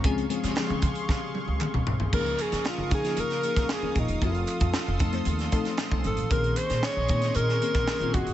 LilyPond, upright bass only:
\new Staff \with { instrumentName = "Upright bass" } { \clef bass \time 4/4 \key f \phrygian \tempo 4 = 115 des,8 r16 des16 r16 des,16 des8 des8 r16 des,16 r16 des,16 ces,16 c,16 | des,8 r16 des16 r16 des,16 des8 des8 r16 des,16 r16 des,16 ees,,16 fes,,16 | f,,8 r16 f,16 r16 f,,16 f,8 ees,8 r8. c,16 aes,,16 a,,16 | bes,,8 r16 bes,16 r16 bes,,16 bes,8 bes,8 r16 bes,,16 r16 bes,,16 ges,,16 g,,16 | }